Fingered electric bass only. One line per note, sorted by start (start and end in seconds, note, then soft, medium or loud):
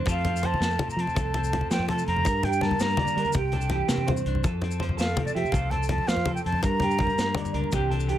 0.06 0.52 F2 medium
0.60 0.76 F2 medium
0.96 1.05 F3 medium
1.17 1.62 C2 medium
1.71 2.02 F3 medium
2.08 2.23 F2 medium
2.26 2.72 G2 loud
2.81 2.96 G2 medium
3.17 3.24 G3 medium
3.35 3.81 C2 medium
3.89 4.20 C3 medium
4.25 4.41 C2 medium
4.44 4.90 F2 medium
4.98 5.14 F2 medium
5.35 5.43 F3 medium
5.54 6.00 C2 medium
6.08 6.39 F3 medium
6.46 6.60 F2 medium
6.64 7.09 G2 medium
7.18 7.33 G2 medium
7.54 7.61 C#2 medium
7.73 8.18 C2 medium